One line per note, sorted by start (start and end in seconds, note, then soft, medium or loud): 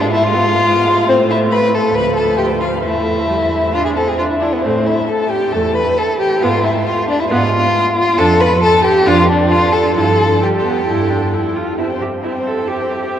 0.00 1.05 G#2 medium
0.00 0.13 G#3 medium
0.00 0.12 D4 medium
0.00 0.06 D5 medium
0.12 0.22 B3 medium
0.12 0.24 E4 medium
0.12 0.25 E5 medium
0.23 0.35 G#3 medium
0.23 1.08 F4 loud
0.23 1.10 F5 medium
0.34 0.45 B3 medium
0.43 0.56 G#3 medium
0.55 0.65 B3 medium
0.65 0.77 G#3 medium
0.76 0.88 B3 medium
0.86 0.99 G#3 medium
0.97 1.07 B3 medium
1.07 1.91 A2 medium
1.07 1.96 A3 medium
1.07 1.17 C4 loud
1.07 1.30 C5 medium
1.30 1.39 E4 medium
1.30 1.38 E5 medium
1.51 1.76 B4 loud
1.51 1.59 B5 medium
1.74 1.96 A4 medium
1.74 1.82 A5 medium
1.95 2.85 D2 medium
1.95 2.84 F3 medium
1.95 2.15 B4 loud
1.95 2.15 B5 medium
2.16 2.37 A4 medium
2.16 2.40 A5 medium
2.38 2.46 G4 medium
2.38 2.61 G5 medium
2.60 2.68 F4 medium
2.60 2.83 F5 medium
2.83 4.44 E2 medium
2.83 3.23 A3 medium
2.83 3.72 E4 medium
2.83 3.75 E5 medium
3.28 3.36 G3 medium
3.50 3.75 A3 medium
3.73 3.97 D4 medium
3.73 3.85 F4 medium
3.73 3.85 F5 medium
3.85 3.90 G#4 medium
3.85 3.90 G#5 medium
3.96 4.21 C4 medium
3.96 4.09 A4 medium
3.96 4.01 A5 medium
4.08 4.17 G#4 medium
4.08 4.18 G#5 medium
4.18 4.43 D4 medium
4.18 4.23 F4 medium
4.18 4.29 F5 medium
4.30 4.39 E4 medium
4.30 4.43 E5 medium
4.40 4.54 D4 medium
4.40 4.64 E4 medium
4.40 4.55 D5 medium
4.53 4.64 B3 medium
4.53 4.65 B4 medium
4.62 5.01 A2 medium
4.62 4.85 A3 medium
4.62 4.88 C4 medium
4.62 4.73 C5 medium
4.86 5.09 E4 medium
4.86 5.10 E5 medium
5.09 5.29 A4 medium
5.09 5.33 A5 medium
5.30 5.54 G4 medium
5.30 5.54 G5 medium
5.52 5.90 E2 medium
5.52 5.73 A3 medium
5.52 5.75 A4 medium
5.52 5.76 A5 medium
5.75 6.00 B4 medium
5.75 5.97 B5 medium
5.97 6.20 A4 medium
5.97 6.05 A5 medium
6.20 6.44 G4 medium
6.20 6.42 G5 medium
6.42 6.79 G#2 medium
6.42 6.62 B3 medium
6.42 6.65 F4 medium
6.42 6.63 F5 medium
6.64 6.86 E4 medium
6.64 6.85 E5 medium
6.86 7.08 F4 medium
6.86 6.94 F5 medium
7.08 7.21 D4 medium
7.08 7.19 D5 medium
7.20 7.30 E4 medium
7.20 7.29 E5 medium
7.30 7.67 G#2 medium
7.30 7.51 B3 medium
7.30 8.19 F4 loud
7.30 8.16 F5 medium
8.17 8.54 F2 medium
8.17 8.38 D4 medium
8.17 8.42 A4 loud
8.17 8.25 A5 medium
8.40 8.62 B4 loud
8.40 8.48 B5 medium
8.63 8.84 A4 loud
8.63 8.86 A5 loud
8.84 9.09 G4 loud
8.84 9.05 G5 medium
9.05 9.42 F2 medium
9.05 9.26 D4 medium
9.05 9.28 F4 loud
9.05 9.27 F5 loud
9.28 9.52 D4 medium
9.28 9.51 D5 medium
9.50 9.74 F4 loud
9.50 9.72 F5 medium
9.72 9.95 A4 medium
9.72 9.80 A5 medium
9.94 10.34 G2 medium
9.94 10.17 E4 medium
9.94 10.44 A4 loud
9.94 10.43 A5 medium
10.41 10.63 G3 medium
10.41 11.57 G4 medium
10.41 11.56 G5 medium
10.64 10.86 B3 medium
10.86 11.26 G2 medium
10.86 11.11 E4 medium
11.10 11.35 D4 medium
11.34 11.57 E4 medium
11.56 11.78 F4 medium
11.78 12.19 C4 soft
11.78 11.86 E4 medium
11.78 11.94 G4 soft
11.78 11.91 E5 soft
11.90 12.05 C5 soft
11.90 12.03 G5 soft
12.01 12.09 G4 medium
12.01 12.17 G4 soft
12.01 12.15 E5 soft
12.13 12.26 C5 soft
12.13 12.23 G5 soft
12.23 12.64 C4 soft
12.23 12.32 E4 medium
12.23 12.40 G4 soft
12.23 12.37 E5 soft
12.35 12.52 C5 soft
12.35 12.49 G5 soft
12.46 12.70 A4 medium
12.46 12.60 E5 soft
12.50 12.62 G4 soft
12.59 12.70 C5 soft
12.59 12.69 G5 soft
12.68 13.07 C4 medium
12.68 13.19 G4 medium
12.68 12.81 E5 soft
12.72 12.83 G4 soft
12.80 12.94 C5 soft
12.80 12.92 G5 soft
12.91 13.05 G4 soft
12.91 13.05 E5 soft
13.03 13.13 C5 soft
13.03 13.13 G5 soft
13.12 13.19 C4 medium
13.12 13.19 G4 soft
13.12 13.19 E5 soft